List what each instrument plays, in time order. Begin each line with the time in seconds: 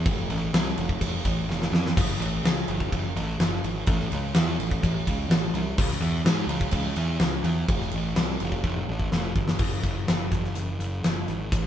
0.06 picked electric bass F1, kick, ride
0.30 picked electric bass A1, ride
0.53 picked electric bass C2, snare, ride
0.77 picked electric bass F1, ride
0.89 kick
1.01 picked electric bass F1, kick, ride
1.25 picked electric bass A1, kick, ride
1.48 picked electric bass F1, snare
1.62 snare
1.72 picked electric bass F2, snare
1.86 snare
1.97 picked electric bass F#1, kick, crash, ride
2.19 picked electric bass A1, ride
2.43 picked electric bass C#2, snare, ride
2.68 picked electric bass F#1, ride
2.80 kick
2.92 picked electric bass F#1, kick, ride
3.16 picked electric bass A1, ride
3.38 picked electric bass F#1, snare, ride
3.63 picked electric bass G#1, ride
3.86 picked electric bass A1, kick, ride
4.00 snare
4.12 picked electric bass C#2, ride
4.34 picked electric bass E2, snare, ride
4.58 picked electric bass A1, ride
4.71 kick
4.83 picked electric bass A1, kick, ride
5.07 picked electric bass C#2, kick, ride
5.29 picked electric bass A1, snare, ride
5.53 picked electric bass C2, ride
5.78 picked electric bass C#2, kick, crash
5.92 snare
6.00 picked electric bass E2, ride
6.25 picked electric bass G#2, snare, ride
6.47 picked electric bass C#2, ride
6.61 kick
6.71 picked electric bass C#2, kick, ride
6.96 picked electric bass E2, ride
7.20 picked electric bass C#2, snare, ride
7.44 picked electric bass E2, ride
7.69 picked electric bass F1, kick, ride
7.81 snare
7.91 picked electric bass A1, ride
8.16 picked electric bass C2, snare, ride
8.40 picked electric bass F1, ride
8.52 kick
8.64 picked electric bass F1, kick
8.76 high tom
8.89 picked electric bass A1
8.99 kick
9.12 picked electric bass F1, snare
9.35 picked electric bass G1, kick
9.48 snare
9.59 picked electric bass F#1, kick, crash
9.83 picked electric bass F#1, kick, closed hi-hat
10.08 picked electric bass F#1, snare, closed hi-hat
10.31 picked electric bass F#1, kick, closed hi-hat
10.44 snare
10.55 picked electric bass F#1, closed hi-hat
10.79 picked electric bass F#1, closed hi-hat
11.03 picked electric bass F#1, snare, closed hi-hat
11.28 picked electric bass G#1, closed hi-hat
11.52 picked electric bass A1, kick, closed hi-hat